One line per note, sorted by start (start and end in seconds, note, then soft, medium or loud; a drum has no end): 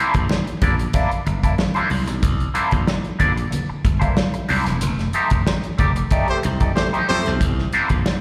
0.00 0.13 A#3 medium
0.00 0.13 D4 medium
0.00 0.13 E4 loud
0.00 0.14 C5 loud
0.14 0.26 A#1 medium
0.14 kick medium
0.14 closed hi-hat soft
0.29 muted clean electric guitar stroke soft
0.29 snare loud
0.29 high conga medium
0.47 closed hi-hat soft
0.62 0.87 A#1 medium
0.62 0.74 A#3 medium
0.62 0.74 D4 medium
0.62 0.74 E4 medium
0.62 0.75 D5 medium
0.62 kick loud
0.62 closed hi-hat medium
0.62 low conga medium
0.79 muted clean electric guitar stroke soft
0.79 closed hi-hat soft
0.93 1.09 A#3 medium
0.93 1.10 D4 medium
0.93 1.10 E4 medium
0.93 1.10 D5 medium
0.93 kick medium
0.93 closed hi-hat medium
0.93 muted conga medium
1.11 muted slap bass stroke soft
1.11 closed hi-hat soft
1.26 1.51 G1 medium
1.26 muted clean electric guitar stroke soft
1.26 closed hi-hat medium
1.26 muted conga soft
1.43 1.55 A#3 soft
1.43 1.55 D4 medium
1.43 1.54 E4 medium
1.43 1.54 D5 medium
1.43 kick medium
1.43 closed hi-hat medium
1.58 muted clean electric guitar stroke soft
1.58 snare loud
1.58 high conga medium
1.74 1.88 A#3 medium
1.74 1.89 D4 medium
1.74 1.89 E4 medium
1.74 1.89 C5 medium
1.74 closed hi-hat soft
1.74 high conga medium
1.89 2.09 C2 medium
1.89 muted clean electric guitar stroke soft
1.89 open hi-hat medium
1.89 high conga medium
2.07 2.23 B1 medium
2.07 muted clean electric guitar stroke soft
2.07 snare soft
2.07 closed hi-hat medium
2.23 2.48 C2 loud
2.23 kick loud
2.23 closed hi-hat loud
2.23 muted conga medium
2.40 closed hi-hat soft
2.54 2.70 A#3 medium
2.54 2.71 D4 medium
2.54 2.71 E4 medium
2.54 2.71 C5 loud
2.54 closed hi-hat medium
2.54 muted conga soft
2.71 2.84 A#1 loud
2.71 kick medium
2.71 closed hi-hat medium
2.87 muted clean electric guitar stroke soft
2.87 snare loud
2.87 high conga medium
3.04 closed hi-hat soft
3.19 3.45 A#1 loud
3.19 3.32 A#3 medium
3.19 3.32 D4 medium
3.19 3.32 E4 medium
3.19 3.32 D5 medium
3.19 kick medium
3.19 closed hi-hat medium
3.19 low conga medium
3.36 muted clean electric guitar stroke soft
3.36 closed hi-hat medium
3.51 muted clean electric guitar stroke soft
3.51 closed hi-hat medium
3.51 muted conga medium
3.51 low conga medium
3.69 muted clean electric guitar stroke medium
3.69 muted slap bass stroke soft
3.85 4.10 G1 medium
3.85 kick medium
3.85 closed hi-hat medium
3.85 muted conga soft
4.00 4.15 A#3 medium
4.00 4.15 D4 medium
4.00 4.15 E4 medium
4.00 4.14 C5 medium
4.00 kick medium
4.00 closed hi-hat medium
4.16 muted clean electric guitar stroke soft
4.16 snare loud
4.16 high conga medium
4.34 muted clean electric guitar stroke medium
4.34 closed hi-hat soft
4.34 high conga medium
4.49 4.63 C2 medium
4.49 4.64 A#3 medium
4.49 4.65 D4 medium
4.49 4.65 E4 medium
4.49 4.64 C5 medium
4.49 open hi-hat medium
4.49 high conga medium
4.66 4.78 E1 loud
4.66 muted clean electric guitar stroke medium
4.66 snare soft
4.66 closed hi-hat medium
4.81 5.07 F1 medium
4.81 closed hi-hat loud
4.81 muted conga medium
4.99 snare soft
4.99 closed hi-hat soft
5.13 5.30 A3 medium
5.13 5.30 D#4 medium
5.13 5.30 G4 medium
5.13 5.30 C5 medium
5.13 closed hi-hat medium
5.13 muted conga soft
5.30 5.43 F1 loud
5.30 kick medium
5.30 closed hi-hat medium
5.47 muted clean electric guitar stroke soft
5.47 snare loud
5.47 high conga medium
5.64 closed hi-hat soft
5.78 6.04 F1 medium
5.78 5.90 A3 medium
5.78 5.91 D#4 medium
5.78 5.91 G4 medium
5.78 5.91 D5 medium
5.78 kick medium
5.78 closed hi-hat medium
5.78 low conga medium
5.96 muted clean electric guitar stroke soft
5.96 closed hi-hat medium
6.11 6.27 A3 medium
6.11 6.27 D#4 medium
6.11 6.27 G4 medium
6.11 6.27 D5 medium
6.11 kick medium
6.11 closed hi-hat medium
6.11 muted conga medium
6.28 6.38 A3 medium
6.28 6.38 G4 medium
6.28 6.38 C5 loud
6.28 muted slap bass stroke soft
6.28 closed hi-hat soft
6.43 6.69 C2 medium
6.43 muted clean electric guitar stroke soft
6.43 closed hi-hat medium
6.43 muted conga soft
6.60 6.72 A3 medium
6.60 6.72 D#4 medium
6.60 6.71 G4 medium
6.60 6.71 D5 medium
6.60 kick medium
6.60 closed hi-hat medium
6.75 6.86 A3 medium
6.75 6.86 G4 medium
6.75 6.87 C5 medium
6.75 muted clean electric guitar stroke soft
6.75 snare loud
6.75 high conga medium
6.93 7.07 A3 medium
6.93 7.07 D#4 medium
6.93 7.07 G4 medium
6.93 7.07 C5 medium
6.93 closed hi-hat soft
7.08 7.22 F2 medium
7.08 7.29 A3 loud
7.08 7.29 G4 loud
7.08 7.29 C5 loud
7.08 open hi-hat medium
7.08 high conga medium
7.26 7.41 B1 medium
7.26 muted clean electric guitar stroke soft
7.26 snare soft
7.26 closed hi-hat medium
7.41 7.66 C2 loud
7.41 kick loud
7.41 closed hi-hat loud
7.41 muted conga medium
7.59 snare soft
7.73 7.88 A#3 medium
7.73 7.89 D4 loud
7.73 7.89 E4 medium
7.73 7.89 C5 medium
7.73 closed hi-hat medium
7.89 8.02 A#1 medium
7.89 kick medium
7.89 closed hi-hat medium
8.06 muted clean electric guitar stroke soft
8.06 snare loud
8.06 high conga medium